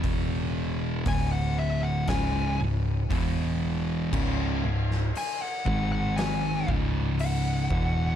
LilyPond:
<<
  \new Staff \with { instrumentName = "Lead electric guitar" } { \time 4/4 \key cis \minor \tempo 4 = 59 r4 gis''16 fis''16 e''16 fis''16 gis''8 r4. | r4 gis''16 fis''16 fis''16 fis''16 gis''8 r8 fis''4 | }
  \new Staff \with { instrumentName = "Distorted electric guitar" } { \clef bass \time 4/4 \key cis \minor <e, b, e>4 <d, a, d>4 <cis, gis, cis>8 <cis, gis,>8 <e, b, e>4 | <cis, gis, cis>8 <cis, gis,>8 r8 <gis, dis gis>4 <cis, gis, cis>4 <e, b, e>8 | }
  \new Staff \with { instrumentName = "Distorted electric guitar" } { \clef bass \time 4/4 \key cis \minor <e, b, e>4 <d, a, d>4 <cis, gis, cis>8 <cis, gis,>8 <e, b, e>4 | <cis, gis, cis>8 <cis, gis,>8 r8 <gis, dis gis>4 <cis, gis, cis>4 <e, b, e>8 | }
  \new Staff \with { instrumentName = "Picked electric bass" } { \clef bass \time 4/4 \key cis \minor e,,4 d,,4 cis,,8 cis,,8 e,,4 | cis,,8 cis,,8 r8 gis,,4 cis,,4 e,,8 | }
  \new DrumStaff \with { instrumentName = "Drums" } \drummode { \time 4/4 <hho bd>4 <hho bd>4 <hho bd sn>4 <hho bd>4 | <cymc bd>8. sn16 hho8 bd8 <hho sn>8 bd8 hho8 bd8 | }
>>